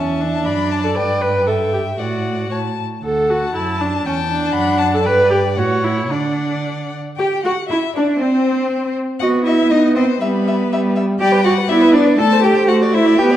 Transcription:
Already playing: cello E2, viola C#4, violin E5 A5
0.21 viola D4
0.45 cello F#2, violin D5 B5
0.72 violin A5
0.84 viola A4
0.95 cello G2, violin B4 G5, viola D5
1.21 viola B4
1.47 viola A4, violin E5 G5
1.73 viola G4
1.98 cello A2, viola F#4, violin D5 F#5
2.51 cello A2, violin C#5 A5
3.03 cello D2, viola A4, violin F#5 A5
3.30 viola F#4
3.55 cello F#2, viola E4, violin A5
3.81 viola D4
4.04 cello E2, viola C#4, violin G5 A5
4.30 viola D4
4.53 cello F#2, violin F#5 B5
4.78 violin A5
4.94 viola A4
5.05 cello G2, viola B4, violin D5 G5
5.31 viola G4
5.55 cello A2, viola F#4, violin C#5 F#5
5.84 viola E4
6.09 cello D3, viola D4, violin F#5
6.13 violin D5
7.17 cello G4, violin G4 G5, viola G4
7.43 viola F#4, cello F#4, violin F#4 F#5
7.69 viola E4, cello E4, violin E4 E5
7.95 cello D4, viola D4, violin D4 D5
8.19 violin C4 C5, viola C4, cello C4
9.19 viola B3, cello F#4, violin D#5 F#5
9.45 cello E4, violin D#5 E5
9.71 viola B3, cello D#4, violin D#5
9.96 cello C4, violin C5 D#5
10.21 viola G3, cello B3, violin B4 E5
10.48 violin E5
10.71 viola G3, violin E5
10.96 violin E5
11.19 viola G3, cello G4, violin D5 G5
11.32 violin B4
11.44 cello F#4, violin D5 F#5
11.58 violin B4
11.69 viola B3, cello E4, violin D5 E5
11.81 violin B4
11.93 cello D4, violin D5
12.07 violin B4
12.18 viola A3, violin A4 A5, cello A4
12.32 violin C5
12.44 cello G4, violin A4 G5
12.56 violin C5
12.68 viola A3, cello F#4, violin C5 F#5
12.82 violin D5
12.92 cello E4, violin C5 E5
13.06 violin D5
13.17 viola B3, cello G4, violin B4 G5
13.31 violin D5

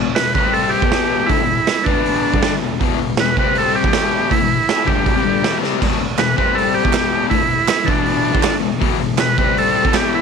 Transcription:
Already playing: distorted electric guitar E2 B2
0.15 distorted electric guitar E2 B2, transistor combo organ B4, snare, open hi-hat
0.35 distorted electric guitar C3 G3 C4, transistor combo organ B4, kick
0.53 transistor combo organ A4, open hi-hat
0.69 transistor combo organ G4
0.82 distorted electric guitar E2 B2 E3, kick
0.92 snare, open hi-hat
1.26 distorted electric guitar D3, transistor combo organ E4, kick, open hi-hat
1.30 distorted electric guitar A3
1.40 distorted electric guitar E2 B2
1.67 snare, open hi-hat
1.83 distorted electric guitar E2 B2, transistor combo organ D4, kick
1.88 distorted electric guitar E3
2.06 open hi-hat
2.34 distorted electric guitar G2 D3 G3, kick
2.43 snare, open hi-hat
2.52 muted distorted electric guitar stroke
2.61 distorted electric guitar E2 B2
2.80 distorted electric guitar E2 B2 E3, kick, open hi-hat
2.99 distorted electric guitar E2 B2
3.17 distorted electric guitar E2 B2, transistor combo organ B4, snare, open hi-hat
3.37 distorted electric guitar C3 G3 C4, transistor combo organ B4, kick
3.55 transistor combo organ A4, open hi-hat
3.75 transistor combo organ G4
3.83 distorted electric guitar E2 B2 E3, kick
3.93 snare, open hi-hat
4.30 distorted electric guitar D3 A3, transistor combo organ E4, kick, open hi-hat
4.39 distorted electric guitar E2 B2
4.69 snare, open hi-hat
4.85 distorted electric guitar G2 D3 G3, transistor combo organ G4, kick
5.05 distorted electric guitar E2 B2, kick, open hi-hat
5.14 distorted electric guitar C3 G3
5.24 distorted electric guitar G2 D3 G3
5.43 distorted electric guitar E2 B2 E3, snare, open hi-hat
5.61 distorted electric guitar C3 G3 C4, snare
5.80 distorted electric guitar E2 B2 E3, kick, open hi-hat, crash
5.99 distorted electric guitar E2 B2
6.18 distorted electric guitar E2 B2, transistor combo organ B4, snare, clap, open hi-hat
6.36 distorted electric guitar C3 G3 C4, transistor combo organ B4, kick
6.55 transistor combo organ A4, open hi-hat
6.74 transistor combo organ G4
6.83 distorted electric guitar E2 B2 E3, kick
6.93 snare, clap, open hi-hat
7.29 distorted electric guitar D3 A3, transistor combo organ E4, kick, open hi-hat
7.38 distorted electric guitar E2 B2
7.68 snare, clap, open hi-hat
7.85 distorted electric guitar E2 B2 E3, transistor combo organ D4, kick
8.06 open hi-hat
8.32 distorted electric guitar G2 D3 G3, kick
8.43 snare, clap, open hi-hat
8.50 muted distorted electric guitar stroke
8.60 distorted electric guitar E2 B2
8.79 distorted electric guitar E2 B2 E3, kick, open hi-hat
8.99 distorted electric guitar E2 B2
9.18 distorted electric guitar E2 B2, transistor combo organ B4, snare, clap, open hi-hat
9.38 distorted electric guitar C3 G3 C4, transistor combo organ B4, kick
9.58 transistor combo organ A4, open hi-hat
9.84 distorted electric guitar E2 B2 E3, kick
9.94 transistor combo organ G4, snare, clap, open hi-hat
10.15 transistor combo organ E4

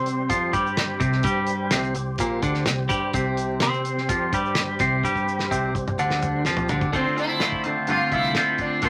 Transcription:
Already playing: fingered electric bass C3, tonewheel organ G3 C4 G4 C5, clean electric guitar C4
0.06 closed hi-hat, shaker
0.29 fingered electric bass F2, clean electric guitar F3, kick, closed hi-hat, shaker
0.53 fingered electric bass G2, clean electric guitar G3, kick, closed hi-hat, shaker
0.66 shaker
0.77 snare, closed hi-hat, shaker
1.00 fingered electric bass C2, clean electric guitar C3, kick, closed hi-hat, shaker
1.12 snare
1.23 fingered electric bass G2, clean electric guitar G3, kick, closed hi-hat, shaker
1.47 closed hi-hat, shaker
1.71 fingered electric bass C2, clean electric guitar C3, snare, closed hi-hat, shaker
1.84 shaker
1.95 fingered electric bass C2, clean electric guitar C3, closed hi-hat, shaker
2.18 fingered electric bass A#1, clean electric guitar A#2, kick, closed hi-hat, shaker
2.42 fingered electric bass D2, clean electric guitar D3, kick, closed hi-hat, shaker
2.54 snare, shaker
2.66 fingered electric bass C2, clean electric guitar C3, snare, closed hi-hat, shaker
2.89 fingered electric bass G2, clean electric guitar G3, kick, closed hi-hat, shaker
3.13 fingered electric bass C2, clean electric guitar C3, kick, closed hi-hat, shaker
3.37 closed hi-hat, shaker
3.60 fingered electric bass C3, clean electric guitar C4, snare, closed hi-hat, shaker
3.74 shaker
3.85 closed hi-hat, shaker
3.98 snare
4.09 fingered electric bass F2, clean electric guitar F3, kick, closed hi-hat, shaker
4.33 fingered electric bass G2, clean electric guitar G3, kick, closed hi-hat, shaker
4.46 shaker
4.55 snare, closed hi-hat, shaker
4.79 fingered electric bass C2, clean electric guitar C3, kick, snare, closed hi-hat, shaker
5.04 fingered electric bass G2, clean electric guitar G3, kick, shaker
5.16 kick, shaker
5.28 shaker
5.39 snare, shaker
5.51 fingered electric bass C2, clean electric guitar C3, kick, shaker
5.75 fingered electric bass C2, clean electric guitar C3, kick, shaker
5.88 mid tom, shaker
5.99 fingered electric bass D2, clean electric guitar D3, shaker
6.10 snare, shaker
6.22 mid tom, shaker
6.45 fingered electric bass F2, clean electric guitar F3, snare, shaker
6.57 floor tom, shaker
6.69 fingered electric bass D2, clean electric guitar D3, floor tom, shaker
6.81 kick, shaker
6.92 fingered electric bass D2, clean electric guitar D3 A3 C4 F4, sitar C4, kick, closed hi-hat
7.07 fingered electric bass D3
7.16 clean electric guitar A3 C4 F4, sitar E4, closed hi-hat
7.40 clean electric guitar D3 A3 C4 F4, snare, closed hi-hat
7.52 kick
7.64 fingered electric bass D3, clean electric guitar A3 C4 F4, closed hi-hat
7.68 sitar D4
7.87 fingered electric bass G2, clean electric guitar D3 A3 C4, sitar F4, closed hi-hat
7.91 clean electric guitar F4
8.11 fingered electric bass C2, clean electric guitar A3 C4 F4, sitar E4, kick, closed hi-hat
8.23 snare
8.35 clean electric guitar D3 A3 C4, snare, closed hi-hat
8.39 clean electric guitar F4
8.58 sitar D4, kick, closed hi-hat
8.82 fingered electric bass D2, clean electric guitar D3 A3 C4 F4, sitar C4, kick, closed hi-hat

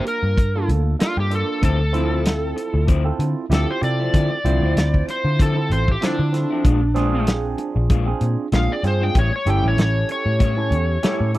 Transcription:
Already playing: tine electric piano A#3 D4 F4 A#4
0.07 electric slide guitar A#4, closed hi-hat
0.23 picked electric bass G2
0.38 kick, closed hi-hat
0.55 tine electric piano A#3 D4 F4 A4
0.69 picked electric bass D2, closed hi-hat
0.99 tine electric piano A#3 D4 F4 A4, electric slide guitar F4, snare, closed hi-hat
1.17 picked electric bass G2, electric slide guitar G4
1.30 tine electric piano A#3 D4 F4 A4, closed hi-hat
1.35 electric slide guitar A4
1.62 picked electric bass D2, clean electric guitar D3 F3 C4 E4, electric slide guitar A4, kick, closed hi-hat
1.80 muted clean electric guitar stroke
1.92 clean electric guitar D3 F3 C4 E4, tine electric piano C4 E4 F4 A4, closed hi-hat
2.11 clean electric guitar F3 C4 E4
2.25 muted clean electric guitar stroke, snare, closed hi-hat
2.56 muted clean electric guitar stroke, closed hi-hat
2.74 picked electric bass D2, muted clean electric guitar stroke
2.87 clean electric guitar D3 F3 C4 E4, kick, closed hi-hat
3.04 tine electric piano C4 E4 F4 A4, muted clean electric guitar stroke
3.19 picked electric bass D3, muted clean electric guitar stroke, closed hi-hat
3.50 picked electric bass D2, clean electric guitar D3 F3 C4 E4, tine electric piano C4 E4 F4 G4, snare, closed hi-hat
3.54 electric slide guitar A4
3.68 electric slide guitar C5, muted clean electric guitar stroke
3.81 picked electric bass C3, tine electric piano C4 E4 F4 A4, electric slide guitar D5, muted clean electric guitar stroke, closed hi-hat
4.00 clean electric guitar F3 C4 E4
4.14 picked electric bass D3, clean electric guitar D3 F3 C4 E4, kick, closed hi-hat
4.32 muted clean electric guitar stroke
4.45 picked electric bass C2, clean electric guitar D3 F3 C4 E4, tine electric piano C4 E4 F4 C5, closed hi-hat
4.62 picked electric bass D2, clean electric guitar F3 C4 E4
4.76 picked electric bass D2, muted clean electric guitar stroke, snare, closed hi-hat
4.94 kick
5.08 electric slide guitar C5, muted clean electric guitar stroke, closed hi-hat
5.25 picked electric bass D3, muted clean electric guitar stroke
5.39 clean electric guitar D3 F3 C4 E4, electric slide guitar A4, kick, closed hi-hat
5.55 tine electric piano C4 E4 F4 A4, muted clean electric guitar stroke
5.70 picked electric bass A1, electric slide guitar C5, muted clean electric guitar stroke, closed hi-hat
5.88 electric slide guitar G4, kick
6.01 clean electric guitar D3 F3 C4 E4, tine electric piano C4 E4 F4 A4, snare, closed hi-hat
6.05 electric slide guitar D4
6.19 picked electric bass D3, muted clean electric guitar stroke
6.32 tine electric piano C4 E4 F4 A4, muted clean electric guitar stroke, snare, closed hi-hat
6.51 clean electric guitar F3 C4 E4
6.64 picked electric bass A#1, clean electric guitar A#2 G#3 D4 F4, kick, closed hi-hat
6.82 muted clean electric guitar stroke
6.94 clean electric guitar A#2 G#3 D4 F4, tine electric piano C4 D4 F4 G#4, snare, closed hi-hat
7.13 clean electric guitar G#3 D4 F4
7.27 muted clean electric guitar stroke, snare, closed hi-hat
7.58 muted clean electric guitar stroke, closed hi-hat
7.76 picked electric bass A#1, muted clean electric guitar stroke
7.90 clean electric guitar A#2 G#3 D4 F4, kick, closed hi-hat
8.06 tine electric piano C4 D4 F4 G#4, muted clean electric guitar stroke
8.21 picked electric bass A#2, muted clean electric guitar stroke, closed hi-hat
8.52 picked electric bass A#1, clean electric guitar A#2 G#3 D4 F4, tine electric piano C4 D4 F4 G#4, electric slide guitar F5, snare, closed hi-hat
8.71 electric slide guitar D5, muted clean electric guitar stroke
8.83 picked electric bass G2, tine electric piano C4 D4 F4 G#4, muted clean electric guitar stroke, snare, closed hi-hat
8.87 electric slide guitar C5
9.01 clean electric guitar G#3 D4 F4, electric slide guitar G5
9.15 picked electric bass A1, clean electric guitar A2 G3 C#4 E4, kick, closed hi-hat
9.19 electric slide guitar C#5
9.32 electric slide guitar C#5, muted clean electric guitar stroke
9.45 picked electric bass G1, clean electric guitar A2 G3 C#4 E4, tine electric piano C#4 E4 G4 A4, closed hi-hat
9.50 electric slide guitar G5
9.63 picked electric bass A1, clean electric guitar G3 C#4 E4
9.68 electric slide guitar C#5
9.77 picked electric bass A1, muted clean electric guitar stroke, snare, closed hi-hat
9.82 electric slide guitar C#5
10.09 electric slide guitar C#5, muted clean electric guitar stroke, closed hi-hat
10.26 picked electric bass A2, muted clean electric guitar stroke
10.39 clean electric guitar A2 G3 C#4 E4, kick, closed hi-hat
10.57 tine electric piano C#4 E4 G4 A4, muted clean electric guitar stroke
10.71 picked electric bass E2, muted clean electric guitar stroke, closed hi-hat
11.03 clean electric guitar A2 G3 C#4 E4, tine electric piano C#4 E4 G4 A4, snare, closed hi-hat
11.20 picked electric bass A2, muted clean electric guitar stroke
11.34 tine electric piano C#4 E4 G4, closed hi-hat

